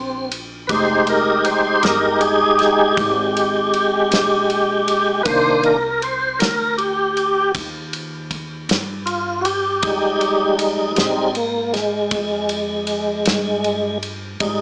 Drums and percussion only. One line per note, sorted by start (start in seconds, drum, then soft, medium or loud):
0.32 ride medium
0.69 kick medium
0.69 ride medium
1.07 ride medium
1.45 ride medium
1.83 snare medium
1.83 ride medium
2.21 ride medium
2.59 snare soft
2.59 ride soft
2.97 kick medium
2.97 ride medium
3.37 ride medium
3.73 ride medium
4.12 snare loud
4.12 ride medium
4.50 ride soft
4.88 ride medium
5.25 kick medium
5.25 ride medium
5.63 ride soft
6.02 ride medium
6.40 snare loud
6.40 ride medium
6.78 ride soft
7.17 ride soft
7.55 kick medium
7.55 ride medium
7.93 ride medium
8.31 kick medium
8.31 ride soft
8.69 snare loud
8.69 ride medium
9.07 ride soft
9.45 ride medium
9.83 kick loud
9.83 ride medium
10.21 ride medium
10.59 ride medium
10.96 snare medium
10.96 ride medium
11.35 ride medium
11.74 snare soft
11.74 ride medium
12.11 kick medium
12.11 ride medium
12.49 ride medium
12.87 ride medium
13.25 snare loud
13.25 ride medium
13.64 ride soft
14.03 ride medium
14.40 kick loud
14.40 ride medium